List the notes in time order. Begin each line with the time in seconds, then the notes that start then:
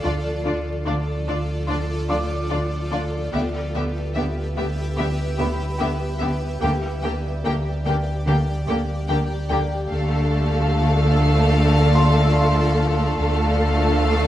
0.03 D2 D3 D4 F4 A4 D5
0.45 D2 D3 D4 F4 D5
0.86 D2 D3 D4 F4 D5
1.28 D2 D3 D4 F4 D5
1.68 D2 D3 D4 F4 D5
2.09 D2 D3 D4 F4 D5 D6
2.50 D2 D3 D4 F4 D5
2.91 D2 D3 D4 F4 D5
3.33 D2 D3 B3 G4 B4 E5
3.75 D2 D3 B3 G4 E5
4.15 D2 D3 B3 G4 E5
4.57 D2 D3 B3 G4 E5
4.98 D2 D3 B3 G4 E5
5.38 D2 D3 B3 G4 E5 B5
5.79 D2 D3 B3 G4 E5
6.20 D2 D3 B3 G4 E5
6.62 D2 D3 A#3 G4 D5 G5
7.03 D2 D3 A#3 G4 G5
7.44 D2 D3 A#3 G4 G5
7.85 D2 D3 A#3 G4 G5
8.26 D2 D3 A#3 G4 G5
8.68 D2 D3 A#3 G4 G5
9.09 D2 D3 A#3 G4 G5
9.49 D2 D3 A#3 G4 G5
9.90 D2 D3 A3 F4 A4 D5 F5
11.95 C6
13.19 D2 D3 A3 F4 A4 D5 F5